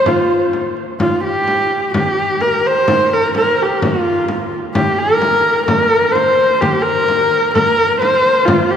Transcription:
0.06 horsehead fiddle F4, frame drum
0.31 frame drum
0.53 frame drum
0.77 frame drum
1.00 horsehead fiddle F4, frame drum
1.24 horsehead fiddle G4, frame drum
1.48 frame drum
1.94 horsehead fiddle G4, frame drum
2.18 frame drum
2.41 horsehead fiddle A#4, frame drum
2.67 horsehead fiddle C5
2.88 frame drum
3.12 horsehead fiddle A#4, frame drum
3.35 horsehead fiddle A#4, frame drum
3.62 horsehead fiddle G4
3.82 horsehead fiddle F4, frame drum
4.05 frame drum
4.29 frame drum
4.52 frame drum
4.75 horsehead fiddle G4, frame drum
4.99 horsehead fiddle A#4
5.22 frame drum
5.67 horsehead fiddle A#4, frame drum
5.92 frame drum
6.12 horsehead fiddle C5, frame drum
6.39 frame drum
6.61 horsehead fiddle G4, frame drum
6.83 horsehead fiddle A#4, frame drum
7.08 frame drum
7.54 horsehead fiddle A#4, frame drum
7.79 frame drum
8.01 horsehead fiddle C5, frame drum
8.26 frame drum
8.46 horsehead fiddle F4, frame drum
8.71 horsehead fiddle G4, frame drum

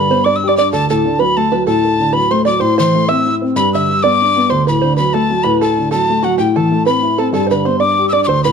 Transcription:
Already playing: upright piano G2, five-string banjo B4, tin whistle B5
0.10 upright piano B3, five-string banjo C5
0.25 upright piano D4, five-string banjo D5, tin whistle D6
0.36 tin whistle E6
0.44 upright piano G4
0.48 five-string banjo D5, tin whistle D6
0.57 upright piano D4, five-string banjo D5, tin whistle D6
0.73 upright piano D2, five-string banjo A4, tin whistle A5
0.90 upright piano A2, five-string banjo A4, tin whistle A5
1.05 upright piano D3
1.19 upright piano F#3, five-string banjo B4, tin whistle B5
1.37 upright piano A3, five-string banjo A4, tin whistle A5
1.52 upright piano F#3, five-string banjo B4
1.67 upright piano A2, five-string banjo A4, tin whistle A5
1.85 upright piano A4
1.99 upright piano D3
2.13 upright piano F#3, five-string banjo B4, tin whistle B5
2.31 upright piano A3, five-string banjo C5, tin whistle C6
2.45 upright piano F#3, five-string banjo D5, tin whistle D6
2.60 upright piano A2, five-string banjo C5, tin whistle C6
2.78 upright piano E3, five-string banjo C5, tin whistle C6
2.94 upright piano A3
3.08 upright piano C4, five-string banjo E5, tin whistle E6
3.26 upright piano E4
3.42 upright piano C4
3.56 upright piano G2, five-string banjo B4, tin whistle B5
3.74 upright piano D3, five-string banjo E5, tin whistle E6
3.89 upright piano G3
4.03 upright piano B3, five-string banjo D5, tin whistle D6
4.22 upright piano D4
4.36 upright piano B3
4.50 upright piano D2, five-string banjo C5, tin whistle C6
4.67 upright piano A2, five-string banjo B4, tin whistle B5
4.81 upright piano D3, five-string banjo C5
4.97 upright piano F#3, five-string banjo B4, tin whistle B5
5.13 upright piano A3, five-string banjo A4, tin whistle A5
5.30 upright piano F#3
5.43 upright piano A2, five-string banjo B4, tin whistle B5
5.61 five-string banjo A4, upright piano A4, tin whistle A5
5.78 upright piano D3
5.91 upright piano F#3, five-string banjo A4, tin whistle A5
6.10 upright piano A3
6.23 upright piano F#3, five-string banjo F#4, tin whistle F#5
6.38 upright piano A2, five-string banjo G4, tin whistle G5
6.56 upright piano E3, five-string banjo A4, tin whistle A5
6.71 upright piano A3
6.86 upright piano C4, five-string banjo B4, tin whistle B5
7.03 upright piano E4
7.18 upright piano C4, five-string banjo A4, tin whistle A5
7.33 upright piano G2, five-string banjo A4, tin whistle A5
7.47 upright piano D3, five-string banjo C5
7.51 five-string banjo B4, tin whistle B5
7.65 upright piano B3, five-string banjo C5, tin whistle C6
7.80 upright piano D4, five-string banjo D5, tin whistle D6
7.98 upright piano G4
8.09 five-string banjo D5, tin whistle D6 E6
8.13 upright piano D4
8.24 upright piano D2, tin whistle C6 D6
8.29 five-string banjo C5
8.44 upright piano A2, five-string banjo B4, tin whistle B5

